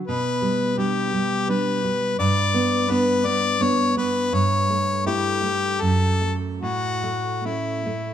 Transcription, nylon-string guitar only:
0.09 B2
0.42 G3
0.78 G3 D4
1.14 G3
1.49 G3 D4
1.84 G3
2.20 G2
2.54 B3
2.90 B3 D4
3.25 B3
3.61 B3 D4
3.97 B3
4.33 G2
4.70 A3
5.06 A3 E4
5.43 A3
5.82 F#2
6.21 A3
6.62 A2
7.03 A3
7.45 A3 C#4
7.86 A3

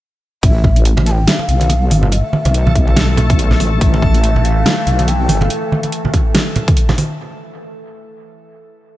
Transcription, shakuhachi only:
0.44 E5
1.07 A5
1.11 G5
1.28 F5
2.12 E5
3.81 E5
4.44 F5
5.08 G5
5.41 F5

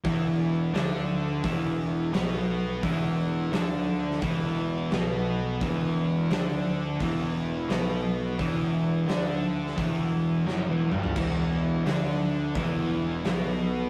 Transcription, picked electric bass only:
0.05 E1
0.74 D2
1.44 E1
2.13 B1
2.83 E1
3.52 D2
4.22 E1
4.91 B1
5.61 E1
6.30 D2
7.01 E1
7.69 B1
8.39 E1
9.08 D2
9.77 E1
10.47 F#1
10.69 E1
10.92 G1
11.17 E1
11.86 D2
12.55 E1
13.24 B1

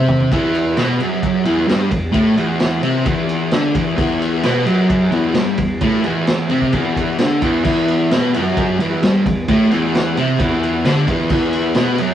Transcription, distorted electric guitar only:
Already playing: C3 C4
0.32 E2 E3
0.77 B2 B3
0.99 F#2 F#3
1.45 E2 E3
1.67 G2 G3
1.91 E2
2.12 A2 A3
2.36 E2 E3
2.82 C3 C4
3.05 E2 E3
3.51 D3 D4
3.75 E2 E3
3.97 E2 E3
4.43 B2 B3
4.66 F#2 F#3
5.11 E2 E3
5.35 G2 G3
5.58 E2
5.81 A2 A3
6.04 E2 E3
6.49 C3 C4
6.73 E2 E3
7.18 D3 D4
7.42 E2 E3
7.64 E2 E3
8.11 B2 B3
8.33 F#2 F#3
8.79 E2 E3
9.03 G2 G3
9.26 E2
9.49 A2 A3
9.71 E2 E3
10.17 C3 C4
10.39 E2 E3
10.85 D3 D4
11.07 E2 E3
11.31 E2 E3
11.75 B2 B3
11.98 F#2 F#3

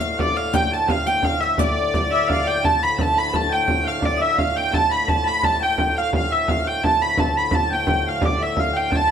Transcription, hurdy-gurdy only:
Already playing: F5
0.20 D5
0.37 F5
0.55 G5
0.73 A5
0.90 F5
1.06 G5
1.24 F5
1.40 E5
1.59 D5
2.12 E5
2.28 F5
2.47 G5
2.65 A5
2.83 B5
3.01 A5
3.18 B5
3.36 A5
3.53 G5
3.87 F5
4.05 D5
4.21 E5
4.39 F5
4.57 G5
4.74 A5
4.92 B5
5.09 A5
5.28 B5
5.45 A5
5.63 G5
5.98 F5
6.15 F5
6.32 E5
6.49 F5
6.67 G5
6.84 A5
7.02 B5
7.19 A5
7.37 B5
7.55 A5
7.73 G5
8.08 F5
8.25 D5
8.42 E5
8.60 F5
8.77 G5
8.95 A5

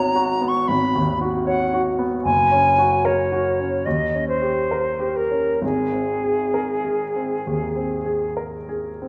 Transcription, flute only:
Already playing: A#5
0.48 C#6
0.68 B5
1.46 F#5
2.24 G#5
3.05 C#5
3.85 D#5
4.28 C5
5.16 A#4
5.64 G#4

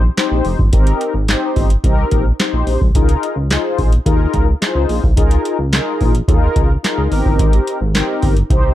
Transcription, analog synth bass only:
Already playing: A#1
0.31 A#1
0.45 F1
0.59 G1
0.73 G#1
1.14 G#1
1.57 G1
1.84 C2
2.12 A#1
2.53 A#1
2.67 A#1
2.81 C2
2.95 C#2
3.36 C#2
3.79 A#1
4.06 D#2
4.34 C#2
4.75 C#2
4.89 A#1
5.04 C2
5.17 C#2
5.59 C#2
6.01 A#1
6.28 D#2
6.56 C#2
6.98 C#2
7.12 G#1
7.26 G1
7.39 G#1
7.81 G#1
8.23 G1
8.50 C2

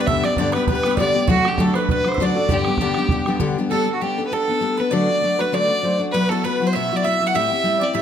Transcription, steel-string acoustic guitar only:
0.08 G2 D3 G3 B3 D4 G4
0.24 G3 B3 D4 G4
0.38 G2 D3 G3 B3 D4 G4
0.55 G3 B3 D4 G4
0.69 G3 B3 D4 G4
0.85 G3 B3 D4 G4
0.99 G2 D3 G3 B3 D4 G4
1.15 G3 B3 D4 G4
1.29 D3 F#3 A3 D4 F#4
1.45 A3 D4 F#4
1.58 D3 F#3 A3 D4 F#4
1.75 A3 D4 F#4
1.89 F#3 A3 D4 F#4
2.06 A3 D4 F#4
2.20 D3 F#3 A3 D4 F#4
2.36 A3 D4 F#4
2.50 G2 D3 G3 B3 D4 G4
2.67 G3 B3 D4 G4
2.81 G2 D3 G3 B3 D4 G4
2.97 G3 B3 D4 G4
3.11 G3 B3 D4 G4
3.27 G3 B3 D4 G4
3.40 G2 D3 G3 B3 D4 G4
3.58 G3 B3 D4 G4
3.71 G3 B3 D4 A4
3.86 B3 D4 A4
4.02 G3 B3 D4 A4
4.18 B3 D4 A4
4.32 G3 B3 D4 A4
4.48 B3 D4 A4
4.61 G3 B3 D4 A4
4.78 B3 D4 A4
4.91 D3 F#3 A3 D4 F#4
5.09 A3 D4 F#4
5.22 F#3 A3 D4 F#4
5.39 A3 D4 F#4
5.52 D3 F#3 A3 D4 F#4
5.68 A3 D4 F#4
5.83 F#3 A3 D4 F#4
5.98 A3 D4 F#4
6.14 E2 B2 F#3 B3 E4 F#4
6.30 F#3 B3 E4 F#4
6.43 F#3 B3 E4 F#4
6.60 F#3 B3 E4 F#4
6.75 E2 B2 F#3 B3 E4 F#4
6.91 F#3 B3 E4 F#4
7.05 F#3 B3 E4 F#4
7.20 F#3 B3 E4 F#4
7.34 A2 G3 C4 E4 G4
7.50 C4 E4 G4
7.64 G3 C4 E4 G4
7.79 C4 E4 G4
7.93 A2 G3 C4 E4 G4

